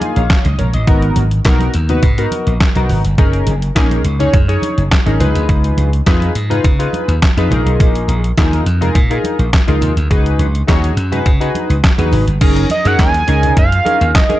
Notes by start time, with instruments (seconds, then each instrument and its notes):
Already playing: analog polysynth A#3 D#4 F4 G#4
0.01 analog polysynth F5 G#5, closed hi-hat, muted conga, high conga
0.16 slap bass A#1, analog polysynth C#5 F5, closed hi-hat
0.30 kick, snare, clap, closed hi-hat, muted conga
0.45 slap bass C#2, analog polysynth D#5, closed hi-hat, high conga
0.58 slap bass A#1, analog polysynth A#4 C#5, closed hi-hat, muted conga, high conga, low conga
0.73 slap bass A1, analog polysynth D#5, closed hi-hat
0.87 slap bass G#1, analog polysynth B3 D#4 F#4 A#4, kick, closed hi-hat
1.02 closed hi-hat
1.16 slap bass G#1, closed hi-hat, muted conga, high conga
1.31 closed hi-hat
1.45 slap bass B1, analog polysynth B3 D#4 F#4 A#4, kick, snare, clap, closed hi-hat
1.59 closed hi-hat, high conga
1.74 slap bass D#2, closed hi-hat
1.89 analog polysynth B3 D#4 F#4 B4, closed hi-hat, low conga
2.02 slap bass G#2, kick, closed hi-hat, low conga
2.18 analog polysynth B3 D#4 F#4 A#4, closed hi-hat
2.31 closed hi-hat, high conga
2.47 slap bass A#1, closed hi-hat
2.60 kick, snare, clap, closed hi-hat, muted conga
2.75 slap bass B1, analog polysynth B3 D#4 F#4 A#4, closed hi-hat, high conga
2.89 slap bass G#1, open hi-hat, muted conga, high conga, low conga
3.05 slap bass G1, closed hi-hat
3.18 slap bass F#1, analog polysynth C#4 D#4 G#4 A#4, kick, closed hi-hat, muted conga
3.33 closed hi-hat
3.47 slap bass F#1, closed hi-hat, muted conga, high conga
3.62 closed hi-hat
3.75 slap bass A#1, analog polysynth C#4 D#4 G#4 A#4, kick, snare, clap, closed hi-hat
3.90 closed hi-hat, high conga
4.04 slap bass C#2, closed hi-hat, muted conga
4.19 analog polysynth C#4 D#4 G#4 C#5, closed hi-hat, low conga
4.33 slap bass F#2, kick, closed hi-hat, muted conga, low conga
4.48 analog polysynth C#4 D#4 G#4 C#5, closed hi-hat
4.62 closed hi-hat, muted conga, high conga
4.78 slap bass F#1, closed hi-hat
4.91 kick, snare, clap, closed hi-hat, muted conga
5.06 slap bass G#1, analog polysynth C#4 D#4 G#4 A#4, closed hi-hat, high conga
5.20 slap bass C#2, analog polysynth D#4 F4 G#4 B4, closed hi-hat, muted conga, high conga, low conga
5.35 slap bass D2, closed hi-hat
5.49 slap bass C#2, kick, closed hi-hat, muted conga
5.64 closed hi-hat
5.77 slap bass C#2, closed hi-hat, muted conga, high conga
5.93 closed hi-hat
6.06 slap bass F2, analog polysynth D#4 F4 G#4 B4, kick, snare, clap, closed hi-hat
6.21 closed hi-hat, high conga
6.35 slap bass G#2, closed hi-hat
6.50 analog polysynth D#4 F4 G#4 B4, closed hi-hat, low conga
6.64 slap bass C#3, kick, closed hi-hat, muted conga, low conga
6.79 analog polysynth D#4 F4 G#4 B4, closed hi-hat
6.93 closed hi-hat, muted conga, high conga
7.08 slap bass D#2, closed hi-hat
7.22 kick, snare, clap, closed hi-hat, muted conga
7.37 slap bass F2, analog polysynth D#4 F4 G#4 B4, closed hi-hat, high conga
7.51 slap bass A#1, analog polysynth D#4 F4 G#4 A#4, closed hi-hat, high conga, low conga
7.66 slap bass B1, closed hi-hat
7.80 slap bass A#1, kick, closed hi-hat
7.95 closed hi-hat
8.08 slap bass A#1, closed hi-hat, muted conga, high conga
8.24 closed hi-hat
8.38 slap bass D#2, analog polysynth D#4 F4 G#4 A#4, kick, snare, clap, closed hi-hat, muted conga
8.52 closed hi-hat, high conga
8.66 slap bass F2, closed hi-hat, muted conga
8.81 analog polysynth D#4 F4 G#4 A#4, closed hi-hat, low conga
8.95 slap bass A#2, kick, closed hi-hat, low conga
9.10 analog polysynth D#4 F4 G#4 A#4, closed hi-hat
9.24 closed hi-hat, high conga
9.39 slap bass A#1, closed hi-hat
9.53 kick, snare, clap, closed hi-hat
9.68 slap bass C#2, analog polysynth D#4 F4 G#4 A#4, closed hi-hat, high conga
9.81 slap bass D#2, closed hi-hat, high conga, low conga
9.97 slap bass D2, closed hi-hat
10.10 slap bass C#2, analog polysynth D#4 F#4 G#4 B4, kick, closed hi-hat, muted conga
10.26 closed hi-hat
10.39 slap bass C#2, closed hi-hat, muted conga, high conga
10.55 closed hi-hat
10.67 slap bass D#2, analog polysynth D#4 F#4 G#4 C#5, kick, snare, clap, closed hi-hat
10.83 closed hi-hat, high conga
10.97 slap bass F#2, closed hi-hat, muted conga
11.12 analog polysynth D#4 F#4 G#4 B4, closed hi-hat, low conga
11.25 slap bass C#3, kick, closed hi-hat, low conga
11.40 analog polysynth D#4 F#4 G#4 B4, closed hi-hat
11.55 closed hi-hat, high conga
11.70 slap bass C#2, closed hi-hat
11.84 kick, snare, clap, closed hi-hat, muted conga
11.98 slap bass D#2, analog polysynth D#4 F#4 G#4 B4, closed hi-hat, high conga
12.12 slap bass G#1, open hi-hat, muted conga, high conga, low conga
12.27 slap bass G1, closed hi-hat
12.41 slap bass F#1, analog polysynth C#4 D#4 G#4 A#4, kick, closed hi-hat, crash, muted conga
12.56 closed hi-hat
12.70 analog synth lead D#5, closed hi-hat, muted conga, high conga
12.85 slap bass F#2, analog polysynth C#4 D#4 G#4 A#4, analog synth lead F#5, closed hi-hat
12.99 slap bass D#2, analog synth lead G#5, kick, snare, clap, closed hi-hat, muted conga
13.13 closed hi-hat, high conga
13.27 slap bass C#2, analog polysynth C#4 D#4 G#4 A#4, closed hi-hat, muted conga
13.43 closed hi-hat, low conga
13.56 slap bass F#2, analog synth lead F5, kick, closed hi-hat, low conga
13.72 closed hi-hat
13.85 analog polysynth C#4 D#4 G#4 A#4, closed hi-hat, muted conga, high conga
14.01 slap bass D#2, closed hi-hat
14.15 analog synth lead D#5, kick, snare, clap, closed hi-hat
14.29 analog polysynth C#4 D#4 G#4 A#4, closed hi-hat, high conga